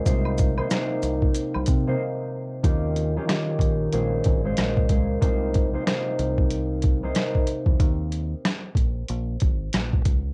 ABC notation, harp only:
X:1
M:4/4
L:1/16
Q:"Swing 16ths" 1/4=93
K:Cphr
V:1 name="Harp"
[C,B,Ec]3 [C,B,Ec] [C,B,Ec]6 z [C,B,Ec] z4 | [E,DFG]3 [E,DFG] [E,DFG]4 [B,,A,Dc]3 [B,,A,Dc]3 [B,,A,Dc]2 | [C,B,Ec]3 [C,B,Ec] [C,B,Ec]6 z [C,B,Ec]3 z2 | z16 |]